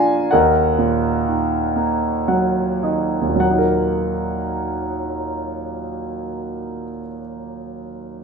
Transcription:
Already playing: A#2 F3 D4 F4 A#4 D5 F5 G#5 A#5
0.31 D#2 A#4 D#5 F#5
0.78 A#2
1.27 D#3
1.76 A#3
2.28 F#3 F#5
2.83 D#3 D#5
3.21 D#2
3.28 A#2
3.36 F#3
3.40 A#3 F#5
3.51 D#4
3.58 A#4

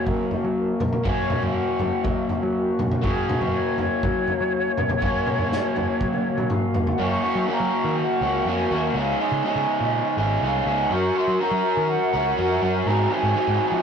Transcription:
Already playing: F#3 A#3 C#4 F#4
0.06 F#3 A#4, kick, floor tom
0.31 floor tom
0.44 F#3
0.58 A#4
0.80 F#2, floor tom, mid tom
0.93 floor tom, mid tom
1.04 F#2 F#3 A#3 C#4 F#4 C#5, kick, floor tom
1.30 floor tom, mid tom
1.42 F#2 F5, floor tom
1.57 F#5
1.79 F#2, floor tom
2.04 F#3 D#5, kick, floor tom
2.29 floor tom
2.43 F#3
2.58 F#4
2.79 F#2, floor tom, mid tom
2.92 floor tom, mid tom
3.02 F#2 F#3 A#3 C#4 F#4 G#4, kick, floor tom
3.29 floor tom, mid tom
3.41 F#2 B4, floor tom
3.54 C#5
3.78 F#2 C#5, floor tom
4.03 F#3, kick, floor tom
4.28 floor tom
4.40 F#3
4.77 F#2, floor tom, mid tom
4.89 floor tom, mid tom
5.01 F#2 F#3 A#3 C#4 F#4, kick, floor tom
5.26 mid tom
5.38 F#2, floor tom
5.52 snare
5.76 F#2, floor tom
6.01 F#3, kick
6.13 high tom
6.38 F#3, mid tom
6.50 F5, mid tom
6.74 F#2, floor tom
6.87 F#5, floor tom
6.98 F#2 C#3 F#3 A#3 C#4 F#4
7.03 C#6
7.23 F#3 A#3 C#4 F#4
7.35 F#3
7.48 F#2 C#3 F#3 A#3 C#4 F#4
7.53 A#5
7.60 F#3
7.84 D#3
8.01 F#5
8.21 C#2 F#3 A#3 C#4 F#4
8.45 F2 F#3 A#3 C#4 F#4 G#5
8.70 D#2 F#3 A#3 C#4 F#4
8.84 F#5
8.94 C#2 C#3 G#3 C#4 D#4 G#4
8.99 F5
9.19 C#4 D#4 G#4 D#5
9.32 C#3
9.44 C#3 G#3 C#4 D#4 G#4
9.55 C#3
9.80 A#2
10.17 G#1 C#4 D#4 G#4
10.42 C2 G#3 C#4 D#4 G#4 F5
10.65 C#2 C#4 D#4 G#4
10.80 F#5
10.90 F#2 F#3 C#4 F#4 A#4 C#6
11.16 C#4 F#4 A#4 C6
11.27 F#3
11.40 F#3 C#4 F#4 A#4 A#5
11.51 F#3
11.77 D#3
11.89 F#5
12.13 C#2 C#4 F#4 A#4
12.37 F2 F#3 C#4 F#4 A#4 F#5
12.61 F#2 C#4 F#4 A#4
12.76 G#5
12.86 G#2 D#3 F#3 C4 F#4 G#4 A#5
13.11 F#3 C4 F#4 G#4 G#5
13.23 G#2
13.35 G#2 D#3 F#3 C4 F#4 G#4
13.47 G#2
13.72 F3

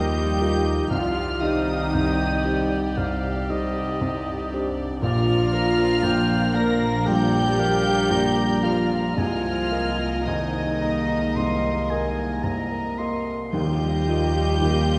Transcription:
Already playing: D#2 D#3 F3 G3 A#3 D#4 F4 G4 A#4 D#5 G5 G6
0.13 F4
0.39 D#4 F4 A#4
0.65 A#3
0.90 C2 C3 F3 G3 C4 F4 G4 D5 F5 F6
1.17 G3
1.41 D#3 C4 D#4 G4 C5 D#5 D#6
1.69 G4
1.94 C2 C3 C5 G5
2.19 G4
2.45 D#4 G4 C5
2.71 G3
2.97 C2 C3 F5
3.50 G3 D#4 G4 C5 D#5
3.76 G4
4.01 C2 C3 C5
4.26 G4
4.52 D4 G4 C5
4.77 G3
5.01 A#1 A#2 F3 D4 F4 A#4 D5 F5 F6
5.27 F3
5.52 A#3 A#4 D5 A#5
5.78 A#4
6.03 A#1 A#2 D5 G5
6.29 A#4
6.54 A#3 A#4 D5 F5 A#5 A#6
6.81 F3
7.06 A#1 A#2 G3 G4 G5 G6
7.32 A#3
7.58 F3 A#3 A#4 D5 F5
7.84 A#4
8.09 A#1 A#2 G3 D5 A#5
8.36 A#4
8.63 F3 A#3 F4 A#4 D5 F5 F6
8.89 F3
9.16 C2 C3 F3 G#3 A#3 F4 A#4 D#5 F5 G#5 F6
9.43 G#3
9.71 A#3 A#4 D#5
9.98 A#4
10.25 C2 C3 D#3 G#3 A#3 D#4 C5 D#5 G#5 D#6
10.53 A#4
10.81 A#3 A#4 D#5 A#5
11.09 G#3
11.36 C2 C3 C6
11.62 A#3
11.90 G#3 A#3 A#4 D#5 G#5
12.17 A#4
12.43 C2 C3 A#5
12.71 A#4
12.98 A#3 A#4 D#5 C6
13.26 G#3
13.52 D#2 D#3 F3 G3 A#3 F4 G4 D#5 G5 G6
13.80 D#4
14.07 A#3 F4 D#5
14.34 F4
14.61 D#2 D#3 F5
14.88 F4

